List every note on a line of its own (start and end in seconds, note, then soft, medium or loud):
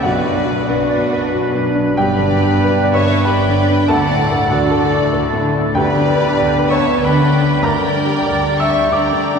0.01 0.60 B1 medium
0.01 1.93 B1 medium
0.01 0.60 B2 medium
0.01 1.92 F#3 medium
0.01 3.84 B3 medium
0.01 3.84 D4 medium
0.01 0.67 F#4 medium
0.01 3.85 B4 medium
0.01 0.65 D5 medium
0.01 0.66 D5 medium
0.01 0.63 F#5 medium
0.05 0.44 F#4 medium
0.05 0.67 B4 medium
0.26 0.59 F#2 medium
0.45 0.80 F#4 soft
0.67 1.25 B1 medium
0.67 1.25 B2 medium
0.67 1.64 D4 medium
0.67 1.61 D4 soft
0.67 1.65 F#4 medium
0.67 1.64 B4 medium
0.67 1.02 B4 medium
0.67 0.89 D5 medium
0.91 1.24 D5 medium
1.12 1.45 B4 medium
1.32 1.89 B1 medium
1.32 1.89 B2 medium
1.32 1.67 F#4 medium
1.52 1.87 F#2 medium
1.75 1.97 D4 medium
1.95 2.54 G1 medium
1.95 3.84 G2 medium
1.95 2.55 G2 medium
1.95 3.85 G3 medium
1.95 2.89 G4 medium
1.95 2.90 B4 medium
1.95 2.88 D5 medium
1.95 2.90 D5 medium
1.95 2.90 G5 medium
2.00 2.41 G4 medium
2.18 2.53 D3 medium
2.43 2.75 G4 medium
2.62 3.18 G1 medium
2.62 3.18 G2 medium
2.62 2.97 B4 medium
2.84 3.17 D5 medium
2.92 3.25 C#5 medium
2.92 3.24 C#5 medium
2.92 3.26 E5 medium
2.92 3.24 A5 medium
2.92 3.25 A5 medium
2.92 3.23 C#6 medium
3.05 3.26 B4 medium
3.24 3.81 G1 medium
3.24 3.81 G2 medium
3.24 3.59 G4 medium
3.24 3.88 B4 medium
3.24 3.86 B4 medium
3.24 3.86 D5 medium
3.24 3.88 G5 medium
3.24 3.89 G5 medium
3.24 3.84 B5 medium
3.49 3.81 D3 medium
3.69 3.89 D4 medium
3.87 5.71 D2 medium
3.87 4.44 D2 medium
3.87 4.44 D3 medium
3.87 5.71 A3 medium
3.87 5.75 A3 medium
3.87 7.49 D4 medium
3.87 5.60 D4 medium
3.87 4.49 A4 medium
3.87 4.30 A4 medium
3.87 5.72 A4 medium
3.87 4.49 D5 medium
3.87 4.49 F#5 medium
3.87 4.51 F#5 medium
3.87 4.46 A5 medium
4.11 4.43 A2 medium
4.32 4.64 A4 medium
4.49 5.06 D3 medium
4.49 5.41 F#4 medium
4.49 5.40 F#4 medium
4.49 5.44 A4 medium
4.49 5.43 D5 medium
4.49 4.84 D5 medium
4.49 5.39 F#5 medium
4.54 5.06 D2 medium
4.71 5.04 A4 medium
4.93 5.25 D5 medium
5.13 5.68 D2 medium
5.13 5.68 D3 medium
5.13 5.46 A4 medium
5.33 5.66 A2 medium
5.55 5.75 D4 medium
5.75 7.61 D2 medium
5.75 6.32 D2 medium
5.75 6.31 D3 medium
5.75 6.67 D3 medium
5.75 6.85 G3 medium
5.75 7.49 B3 medium
5.75 6.99 D4 medium
5.75 6.66 G4 medium
5.75 6.87 B4 medium
5.75 6.66 B4 medium
5.75 6.66 D5 medium
5.75 6.66 G5 medium
5.96 6.29 D3 medium
6.16 6.50 B4 medium
6.37 6.95 D2 medium
6.37 6.95 D3 medium
6.37 6.71 D5 medium
6.59 6.93 B4 medium
6.69 7.02 C#5 medium
6.69 7.01 C#5 medium
6.69 7.02 E5 medium
6.69 7.01 A5 medium
6.69 7.02 A5 medium
6.69 7.00 C#6 medium
6.78 7.14 D5 medium
7.00 7.58 D2 medium
7.00 7.58 D3 medium
7.00 7.63 G3 medium
7.00 7.04 B4 medium
7.00 7.65 B4 medium
7.00 7.66 B4 medium
7.00 7.63 D5 medium
7.00 7.61 G5 medium
7.00 7.65 G5 medium
7.04 7.64 D4 medium
7.04 7.62 B4 medium
7.04 7.62 B5 medium
7.21 7.55 D3 soft
7.42 7.63 D4 medium
7.63 9.39 D2 medium
7.63 8.20 D2 medium
7.63 8.20 D3 medium
7.63 9.39 G3 medium
7.63 8.88 G3 medium
7.63 9.39 D4 medium
7.63 8.55 A#4 medium
7.63 8.59 A#4 medium
7.63 8.90 D5 medium
7.63 8.57 D5 medium
7.63 8.56 G5 medium
7.63 8.58 G5 medium
7.63 8.54 A#5 medium
7.67 8.89 D4 medium
7.83 8.18 D3 soft
8.05 8.39 G4 medium
8.27 8.83 D2 medium
8.27 8.84 D3 medium
8.27 8.60 D5 medium
8.47 8.81 G4 medium
8.58 8.91 E5 medium
8.58 8.89 E5 medium
8.58 8.89 G5 medium
8.58 8.90 C#6 medium
8.58 8.88 E6 medium
8.70 8.92 D5 medium
8.90 9.39 D2 medium
8.90 9.39 D3 medium
8.90 9.39 G3 medium
8.90 9.39 D4 medium
8.90 9.24 G4 medium
8.90 9.39 D5 medium
8.90 9.39 G5 medium
8.90 9.39 A#5 medium
8.90 9.39 D6 medium
9.12 9.39 D3 soft
9.35 9.39 D4 soft